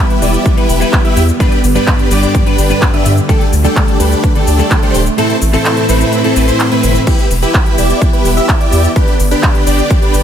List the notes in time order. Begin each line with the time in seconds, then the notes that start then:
Already playing: E3 G3 B3 E4 G4 B4
0.10 closed hi-hat
0.21 E1 G3 B3 E4 G4 B4 D5, open hi-hat, shaker
0.34 closed hi-hat, shaker
0.46 kick, closed hi-hat, shaker
0.57 G3 B3 E4 G4 B4, closed hi-hat
0.69 E1, open hi-hat, shaker
0.80 G3 B3 E4 B4, closed hi-hat, shaker
0.93 kick, clap, closed hi-hat, shaker
1.04 G3 B3 E4 G4 B4 E5, closed hi-hat
1.16 E2, open hi-hat, shaker
1.28 closed hi-hat, shaker
1.39 G2 D3 G3 B3 D4 G4 B4, kick, closed hi-hat, shaker
1.52 closed hi-hat
1.64 G1, open hi-hat, shaker
1.75 G2 G3 B3 D4 G4 B4, shaker
1.87 kick, clap, closed hi-hat, shaker
1.99 closed hi-hat
2.10 G1 G2 G3 B3 D4 G4 B4 D5, open hi-hat, shaker
2.23 closed hi-hat, shaker
2.35 kick, closed hi-hat, shaker
2.46 G2 G3 B3 D4 G4 B4, closed hi-hat
2.58 G1, open hi-hat, shaker
2.69 G2 G3 B3 D4 B4, closed hi-hat, shaker
2.82 kick, clap, closed hi-hat, shaker
2.93 G2 G3 B3 D4 G4 B4 E5, closed hi-hat
3.05 G2, open hi-hat, shaker
3.17 closed hi-hat, shaker
3.28 D3 G3 A3 D4 G4 A4, kick, closed hi-hat, shaker
3.41 closed hi-hat
3.53 D2, open hi-hat, shaker
3.64 D3 G3 A3 D4 G4 A4, closed hi-hat, shaker
3.76 kick, clap, closed hi-hat, shaker
3.88 closed hi-hat
3.99 D2 D3 G3 A3 D4 G4 A4 B4, open hi-hat, shaker
4.12 closed hi-hat, shaker
4.24 kick, closed hi-hat, shaker
4.35 D3 G3 A3 D4 G4 A4, closed hi-hat
4.47 D2, open hi-hat, shaker
4.58 D3 G3 A3 D4 A4, closed hi-hat, shaker
4.71 kick, clap, closed hi-hat, shaker
4.82 D3 G3 A3 D4 G4 A4 C5, closed hi-hat
4.94 D1, open hi-hat, shaker
5.06 closed hi-hat, shaker
5.17 A2 C3 E3 A3 C4 E4 A4, closed hi-hat, shaker
5.30 closed hi-hat
5.42 A1, open hi-hat, shaker
5.53 A2 E3 A3 C4 E4 A4, open hi-hat, shaker
5.65 clap, closed hi-hat, shaker
5.77 closed hi-hat
5.88 A1 A2 E3 A3 C4 E4 A4 B4, open hi-hat, shaker
6.01 closed hi-hat, shaker
6.13 closed hi-hat, shaker
6.24 A2 E3 A3 C4 E4 A4, closed hi-hat
6.36 A1 A2 E3 A3 C4 B4, open hi-hat, shaker
6.48 C4 E4 C5, closed hi-hat, shaker
6.60 clap, closed hi-hat, shaker
6.71 A2 E3 A3 C4 E4 B4, closed hi-hat
6.83 G1, open hi-hat, shaker
6.95 closed hi-hat, shaker
7.07 E3 G3 B3 E4 G4 B4, kick, closed hi-hat, crash, shaker
7.19 closed hi-hat
7.31 E1, open hi-hat, shaker
7.42 E4 G4 B4, closed hi-hat, shaker
7.54 kick, clap, closed hi-hat, shaker
7.66 closed hi-hat
7.78 E1 E4 G4 D5, open hi-hat, shaker
7.90 closed hi-hat, shaker
8.02 kick, closed hi-hat, shaker
8.13 E4 G4 B4, closed hi-hat
8.25 E1, open hi-hat, shaker
8.37 E4 G4 E5, closed hi-hat, shaker
8.49 kick, clap, closed hi-hat, shaker
8.60 E4 G4 D5, closed hi-hat
8.72 E2, open hi-hat, shaker
8.84 closed hi-hat, shaker
8.96 D3 G3 D4 G4 B4, kick, closed hi-hat, shaker
9.08 closed hi-hat
9.20 G1, open hi-hat, shaker
9.31 D4 G4 B4, closed hi-hat, shaker
9.43 kick, clap, closed hi-hat, shaker
9.55 closed hi-hat
9.67 G1 D4 G4 D5, open hi-hat, shaker
9.79 closed hi-hat, shaker
9.91 kick, closed hi-hat, shaker
10.02 D4 G4 B4, closed hi-hat
10.14 G1, open hi-hat, shaker